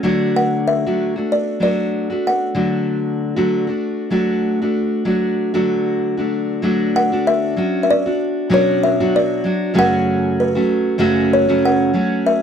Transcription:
0.03 0.87 D3 medium
0.03 0.87 F#3 medium
0.03 0.87 A3 medium
0.03 0.86 D4 medium
0.03 0.86 F#4 medium
0.36 0.50 F#5 medium
0.68 1.32 E5 loud
0.86 1.18 D3 medium
0.86 1.18 F#3 medium
0.86 1.17 A3 medium
0.86 1.16 D4 medium
0.86 1.15 F#4 medium
1.16 1.59 A3 soft
1.16 1.60 D4 soft
1.16 1.60 F#4 soft
1.32 1.60 D5 medium
1.60 2.10 F#3 medium
1.60 2.11 A3 medium
1.60 2.10 D4 medium
1.60 2.09 F#4 medium
1.60 2.26 D5 medium
2.10 2.54 A3 soft
2.10 2.54 D4 soft
2.10 2.54 F#4 medium
2.27 3.47 F#5 medium
2.55 3.38 D3 medium
2.55 3.38 F#3 medium
2.55 3.37 A3 medium
2.55 3.37 D4 medium
2.55 3.36 F#4 medium
3.36 3.68 D3 medium
3.36 3.68 F#3 medium
3.36 3.68 A3 medium
3.36 3.67 D4 medium
3.36 3.66 F#4 medium
3.67 4.10 A3 soft
3.67 4.10 D4 medium
3.67 4.11 F#4 medium
4.10 4.61 F#3 medium
4.10 4.61 A3 medium
4.10 4.61 D4 medium
4.10 4.60 F#4 medium
4.62 5.04 A3 soft
4.62 5.04 D4 medium
4.62 5.05 F#4 medium
5.05 5.54 F#3 medium
5.05 5.53 A3 medium
5.05 5.53 D4 medium
5.05 5.53 F#4 medium
5.54 7.60 D3 medium
5.54 6.62 F#3 medium
5.54 6.18 A3 medium
5.54 6.18 D4 medium
5.54 6.17 F#4 medium
6.17 6.62 A3 soft
6.17 6.62 D4 medium
6.17 6.61 F#4 medium
6.62 7.12 F#3 medium
6.62 7.12 A3 medium
6.62 7.12 D4 medium
6.62 7.11 F#4 medium
6.96 7.24 F#5 loud
7.12 7.57 A3 soft
7.12 7.56 D4 medium
7.12 7.56 F#4 medium
7.27 7.82 E5 loud
7.56 8.06 F#3 medium
7.56 8.07 C#4 medium
7.56 8.06 D4 medium
7.56 8.04 F#4 medium
7.83 7.88 E5 medium
7.91 8.53 D5 loud
8.06 8.50 D4 medium
8.06 8.50 F#4 medium
8.50 9.00 B2 medium
8.50 9.00 F#3 medium
8.50 9.00 C#4 medium
8.50 8.99 D4 medium
8.50 8.99 F#4 medium
8.54 8.81 C#5 medium
8.83 9.14 E5 medium
9.00 9.44 B2 medium
9.00 9.43 F#3 medium
9.00 9.44 D4 medium
9.00 9.44 F#4 medium
9.16 9.73 D5 medium
9.44 9.73 F#3 medium
9.44 9.75 D4 medium
9.44 9.74 F#4 medium
9.74 10.55 F#2 medium
9.74 10.56 C#3 medium
9.74 10.56 F#3 medium
9.74 10.55 A3 medium
9.74 10.54 C#4 medium
9.74 10.54 F#4 medium
9.79 10.41 F#5 loud
10.40 10.97 B4 medium
10.55 10.98 F#3 soft
10.55 10.98 A3 medium
10.55 10.99 C#4 medium
10.55 10.99 F#4 medium
10.98 11.49 F#2 medium
10.98 11.48 C#3 medium
10.98 11.48 F#3 medium
10.98 11.48 A3 medium
10.98 11.48 C#4 medium
10.98 11.47 F#4 loud
11.33 11.64 C#5 medium
11.48 11.94 F#2 medium
11.48 11.93 C#3 medium
11.48 11.92 F#3 medium
11.48 11.93 A3 medium
11.48 11.93 C#4 medium
11.48 11.93 F#4 medium
11.65 12.28 F#5 loud
11.94 12.42 F#3 medium
11.94 12.42 A3 medium
11.94 12.42 C#4 medium
11.94 12.42 F#4 medium
12.27 12.42 E5 loud

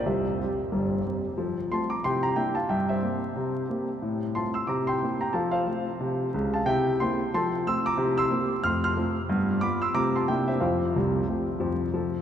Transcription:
0.06 0.34 C2 medium
0.06 0.34 C3 medium
0.06 1.01 C5 medium
0.06 1.05 E5 medium
0.41 0.59 G3 soft
0.41 0.59 C4 soft
0.41 0.59 G4 soft
0.72 1.00 G1 medium
0.72 1.00 G2 medium
1.06 1.24 G3 medium
1.06 1.24 C4 soft
1.06 1.24 G4 soft
1.38 1.66 F3 medium
1.38 1.57 A4 soft
1.71 1.90 A3 soft
1.71 1.90 C4 soft
1.71 1.90 F4 soft
1.71 1.91 A5 medium
1.71 1.91 C6 medium
1.90 2.03 A#5 medium
1.90 2.04 D6 medium
2.04 2.32 C3 medium
2.04 2.24 E4 soft
2.04 2.22 G5 medium
2.04 2.24 C6 loud
2.23 2.35 G5 medium
2.23 2.37 A#5 medium
2.36 2.54 A#3 soft
2.36 2.55 D4 soft
2.36 2.55 E4 medium
2.36 2.55 E5 medium
2.36 2.56 G5 medium
2.55 2.69 F5 medium
2.55 2.69 A5 medium
2.69 2.98 G2 medium
2.69 2.87 E5 medium
2.69 2.89 G5 medium
2.89 3.98 C5 medium
2.89 4.02 E5 medium
3.02 3.21 A#3 soft
3.02 3.21 C4 soft
3.02 3.21 G4 medium
3.36 3.64 C3 medium
3.69 3.87 A#3 soft
3.69 3.88 C4 soft
3.69 3.88 G4 soft
4.02 4.30 A2 medium
4.35 4.54 A3 soft
4.35 4.54 C4 soft
4.35 4.54 F4 medium
4.35 4.54 A5 medium
4.35 4.54 C6 medium
4.54 4.67 C6 medium
4.54 4.68 E6 medium
4.67 4.96 C3 medium
4.67 4.87 E4 soft
4.67 4.87 A#5 medium
4.67 4.87 D6 medium
4.87 5.19 G5 medium
4.87 5.20 C6 medium
5.02 5.20 A#3 soft
5.02 5.21 C4 soft
5.02 5.21 E4 soft
5.21 5.34 G5 medium
5.21 5.34 A#5 medium
5.33 5.62 F3 medium
5.33 5.53 A4 medium
5.33 5.50 F5 medium
5.33 5.53 A5 medium
5.51 6.48 C5 medium
5.51 6.51 F5 medium
5.66 5.85 A3 soft
5.66 5.84 C4 soft
5.66 5.85 F4 medium
6.01 6.28 C3 medium
6.34 6.60 C#2 medium
6.34 6.60 C#3 medium
6.54 6.66 F5 medium
6.54 6.66 A5 medium
6.66 6.94 C3 medium
6.66 6.86 E4 medium
6.66 6.97 E5 medium
6.66 6.99 G5 loud
7.00 7.18 A#3 medium
7.00 7.19 C4 medium
7.00 7.19 E4 medium
7.00 7.31 G5 medium
7.00 7.32 C6 loud
7.34 7.61 F3 medium
7.34 7.53 A4 medium
7.34 7.64 A5 medium
7.34 7.66 C6 loud
7.67 7.85 A3 medium
7.67 7.85 C4 medium
7.67 7.85 F4 medium
7.67 7.85 C6 medium
7.67 7.86 E6 loud
7.86 8.16 A#5 medium
7.86 8.18 D6 loud
7.98 8.26 C3 medium
7.98 8.18 E4 medium
8.18 8.61 C6 medium
8.18 8.64 E6 loud
8.30 8.49 A#3 medium
8.30 8.49 C4 medium
8.30 8.49 G4 medium
8.63 8.92 F2 medium
8.63 8.83 A3 medium
8.63 8.83 C6 medium
8.63 8.83 F6 loud
8.84 9.27 C6 medium
8.84 9.30 F6 loud
8.97 9.15 A3 medium
8.97 9.16 C4 medium
8.97 9.16 F4 medium
9.29 9.58 G2 medium
9.29 9.49 B3 medium
9.61 9.80 G3 soft
9.61 9.80 B3 medium
9.61 9.81 F4 medium
9.61 9.81 B5 medium
9.61 9.82 D6 loud
9.82 9.95 C6 medium
9.82 9.96 E6 medium
9.94 10.23 C3 medium
9.94 10.13 A3 soft
9.94 10.14 C4 soft
9.94 10.14 F4 medium
9.94 10.13 A#5 medium
9.94 10.15 D6 loud
10.16 10.29 A5 medium
10.16 10.29 C6 medium
10.28 10.57 C3 medium
10.28 10.47 A#3 soft
10.28 10.47 D4 soft
10.28 10.49 E4 medium
10.28 10.46 E5 medium
10.28 10.48 G5 medium
10.48 10.60 C5 medium
10.48 10.62 E5 medium
10.60 10.88 F2 medium
10.60 10.88 F3 medium
10.60 11.76 C5 medium
10.60 11.80 F5 medium
10.96 11.22 C2 medium
10.96 11.22 C3 medium
11.28 11.47 A3 soft
11.28 11.47 C4 soft
11.28 11.46 F4 soft
11.60 11.87 F2 medium
11.60 11.87 F3 medium
11.94 12.22 F3 medium
11.94 12.13 A4 medium

